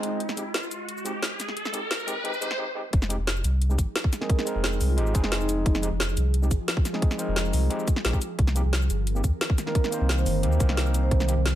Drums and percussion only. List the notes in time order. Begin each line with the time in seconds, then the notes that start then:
0.03 closed hi-hat
0.20 closed hi-hat
0.29 snare, shaker
0.37 closed hi-hat, shaker
0.54 snare, closed hi-hat
0.63 shaker
0.71 closed hi-hat, shaker
0.89 closed hi-hat
0.97 shaker
1.06 closed hi-hat, shaker
1.23 snare, closed hi-hat
1.40 snare, closed hi-hat, shaker
1.48 snare
1.57 closed hi-hat
1.65 snare, shaker
1.74 closed hi-hat, shaker
1.91 snare, closed hi-hat
1.99 shaker
2.08 closed hi-hat, shaker
2.25 closed hi-hat
2.34 shaker
2.42 closed hi-hat, shaker
2.51 snare
2.93 kick, closed hi-hat
3.02 snare, shaker
3.10 closed hi-hat, shaker
3.27 snare, closed hi-hat
3.36 shaker
3.44 closed hi-hat, shaker
3.62 closed hi-hat
3.70 shaker
3.78 kick, closed hi-hat, shaker
3.96 snare, closed hi-hat
4.04 kick
4.13 snare, closed hi-hat, shaker
4.22 snare
4.30 kick, closed hi-hat
4.39 snare, shaker
4.47 closed hi-hat, shaker
4.64 snare, closed hi-hat
4.73 shaker
4.81 open hi-hat, shaker
4.98 closed hi-hat
5.07 shaker
5.15 kick, closed hi-hat, shaker
5.24 snare
5.32 snare, closed hi-hat
5.41 shaker
5.49 closed hi-hat, shaker
5.66 kick, closed hi-hat
5.75 snare, shaker
5.83 closed hi-hat, shaker
6.00 snare, closed hi-hat
6.09 shaker
6.17 closed hi-hat, shaker
6.34 closed hi-hat
6.43 shaker
6.51 kick, closed hi-hat, shaker
6.68 snare, closed hi-hat
6.77 kick
6.85 snare, closed hi-hat, shaker
6.94 snare
7.02 kick, closed hi-hat
7.11 snare, shaker
7.19 closed hi-hat, shaker
7.36 snare, closed hi-hat
7.45 shaker
7.53 open hi-hat, shaker
7.71 closed hi-hat
7.79 shaker
7.88 kick, closed hi-hat, shaker
7.96 snare
8.05 snare, closed hi-hat
8.13 kick, shaker
8.22 closed hi-hat, shaker
8.39 kick, closed hi-hat
8.47 snare, shaker
8.56 closed hi-hat, shaker
8.73 snare, closed hi-hat
8.82 shaker
8.90 closed hi-hat, shaker
9.07 closed hi-hat
9.16 shaker
9.24 kick, closed hi-hat, shaker
9.41 snare, closed hi-hat
9.50 kick
9.58 snare, closed hi-hat, shaker
9.67 snare
9.75 kick, closed hi-hat
9.84 snare, shaker
9.92 closed hi-hat, shaker
10.09 snare, closed hi-hat
10.18 shaker
10.26 open hi-hat, shaker
10.43 closed hi-hat
10.52 shaker
10.60 kick, closed hi-hat, shaker
10.69 snare
10.77 snare, closed hi-hat
10.86 shaker
10.94 closed hi-hat, shaker
11.11 kick, closed hi-hat
11.20 snare, shaker
11.29 closed hi-hat, shaker
11.46 snare, closed hi-hat